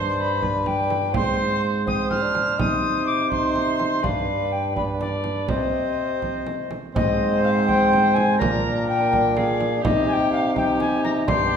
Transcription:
Already playing: G2 D4 C5 C6
0.19 B5
0.42 D4 B4, frame drum
0.66 G5, frame drum
0.90 frame drum
1.14 G#2 C4 C5 C6, frame drum
1.86 C4 C5 D#6, frame drum
2.10 F6, frame drum
2.22 D4
2.35 frame drum
2.59 C3 D#4 C5 D#6, frame drum
3.06 D6
3.30 D#4 C5 C6, frame drum
3.56 frame drum
3.79 frame drum
4.03 G2 D4 B4 F5, frame drum
4.52 G5
4.75 D4 B4 B5, frame drum
5.01 D5, frame drum
5.24 frame drum
5.48 C3 C4 C5 D#5, frame drum
6.22 frame drum
6.47 frame drum
6.71 frame drum
6.95 G#2 C4 C5 D#5, frame drum
7.44 F5
7.67 G5, frame drum
7.93 frame drum
8.14 G#5, frame drum
8.38 A#2 D4 A#4 A#5, frame drum
8.88 G5
9.13 frame drum
9.37 G#4 F5, frame drum
9.61 frame drum
9.83 C3 D#4 G4 D#5, frame drum
10.08 G#5
10.13 G5
10.32 F5
10.56 D#4 G4 G5, frame drum
10.80 G#5, frame drum
11.04 A#5, frame drum
11.27 G2 D4 G4 C6, frame drum

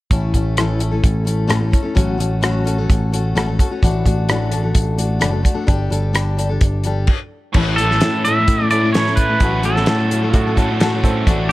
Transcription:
0.11 A1 A2 E3 A3 C#4 E4 A4, kick, closed hi-hat
0.34 A1 A3 C#4 E4 A4, kick, closed hi-hat
0.57 A2 E3 A3 C#4 E4 A4, cross-stick, closed hi-hat
0.79 A3 C#4 E4 A4, closed hi-hat
0.91 A3 C#4 E4 A4
1.04 A1, kick, closed hi-hat
1.25 A3 C#4 E4 A4, closed hi-hat
1.47 A1 A2 E3 A3 C#4 E4 A4, cross-stick, closed hi-hat
1.59 A3 C#4 E4 A4
1.71 A3 C#4 E4 A4, kick, closed hi-hat
1.82 A3 C#4 E4 A4
1.95 A1 A2 F#3 A3 C#4 F#4 A4, kick, closed hi-hat
2.18 A1 A3 C#4 F#4 A4, closed hi-hat
2.41 A2 F#3 A3 C#4 F#4 A4, cross-stick, closed hi-hat
2.64 A3 C#4 F#4 A4, closed hi-hat
2.78 A3 C#4 F#4 A4
2.90 A1, kick, closed hi-hat
3.12 A3 C#4 F#4 A4, closed hi-hat
3.35 A1 A2 F#3 A3 C#4 F#4 A4, cross-stick, closed hi-hat
3.47 A3 C#4 F#4 A4
3.59 A3 C#4 F#4 A4, kick, closed hi-hat
3.70 A3 C#4 F#4 A4
3.82 A1 A2 E3 A3 D4 F#4 A4, kick, closed hi-hat
4.06 A1 A3 D4 F#4 A4, kick, closed hi-hat
4.29 A2 E3 A3 D4 F#4 A4, cross-stick, closed hi-hat
4.52 A3 D4 F#4 A4, closed hi-hat
4.63 A3 D4 F#4 A4
4.75 A1, kick, closed hi-hat
4.98 A3 D4 F#4 A4, closed hi-hat
5.19 F#1 A2 E3 A3 D4 F#4 A4, cross-stick, closed hi-hat
5.31 A3 D4 F#4 A4
5.43 A3 D4 F#4 A4, kick, closed hi-hat
5.55 A3 D4 F#4 A4
5.67 G1 G3 D4 G4 A4, kick, closed hi-hat
5.90 G1 G3 D4 G4 A4, closed hi-hat
6.13 G3 D4 G4 A4, cross-stick, closed hi-hat
6.37 G3 D4 G4 A4, closed hi-hat
6.49 D4 G4 A4
6.61 G1, kick, closed hi-hat
6.84 G3 D4 G4 A4, closed hi-hat
7.07 kick, crash
7.54 A1 A2 E3 A3 C#4 E4 A4, kick, crash
7.76 A3 C#4 E4 A4, closed hi-hat
7.81 A4
7.90 A3 C#4 E4 A4, snare
8.01 A2 E3 A3 C#4 E4 A4, snare, closed hi-hat
8.25 A3 C#4 E4 A4 E5, closed hi-hat
8.38 A3 C#4 A4
8.48 A2, kick, closed hi-hat
8.59 A3 C#4 E4 A4
8.70 A3 C#4 E4 A4 D5, closed hi-hat
8.74 A2 E3
8.83 A3 C#4 E4 A4
8.93 A2 E3 A3 C#4 E4 A4 C#5, snare, closed hi-hat
9.06 A3 C#4 E4 A4, snare
9.16 B4, kick, closed hi-hat
9.29 A3 C#4 E4 A4
9.40 A1 A2 F#3 A3 C#4 F#4 A4, kick, closed hi-hat
9.63 A3 C#4 F#4 A4, closed hi-hat
9.76 C#4 F#4 A4, snare
9.86 A2 A3 C#4 F#4 A4, snare, closed hi-hat
10.10 A3 C#4 F#4 A4, closed hi-hat
10.23 C#4 F#4 A4
10.30 A2 F4, closed hi-hat
10.34 F#4, kick
10.47 C#4 F#4 A4
10.57 A2 F#3 A3 C#4 F#4 A4, kick, closed hi-hat
10.70 C#4 F#4 A4
10.78 A2 F#3 A3 C#4 F#4, snare, closed hi-hat
10.83 A4
10.93 C#4 F#4 A4
11.04 C4 A4, kick, closed hi-hat
11.27 A1 A2 D3 E3 A3 D4 F#4 A4, kick, closed hi-hat

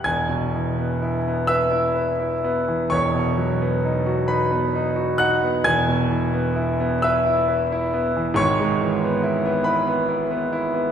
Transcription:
0.04 E1 E2 G#5 G#6
0.29 B2
0.56 E3
0.78 B3
1.02 E4
1.28 B3
1.47 B4 E5 E6
1.71 E4
1.96 B4
2.20 E4
2.44 B3
2.68 E3
2.90 E1 E2 C#5 C#6
3.15 B2
3.38 F#3
3.61 B3
3.85 D#4
4.06 F#4
4.28 D#4 B4 B5
4.52 B3
4.75 D#4
4.96 F#4
5.18 D#4 F#5 F#6
5.43 B3
5.64 E1 E2 G#5 G#6
5.88 B2
6.11 E3
6.33 B3
6.56 E4
6.80 B3
7.02 B4 E5 E6
7.26 E4
7.48 B4
7.72 E4
7.94 B3
8.17 E3
8.34 G#1 G#2 C#5 C#6
8.60 G#3
8.81 E3
9.04 B3
9.24 E4
9.46 B3
9.64 E4 B4 B5
9.87 B3
10.09 E4
10.31 B3
10.53 E4
10.74 B3

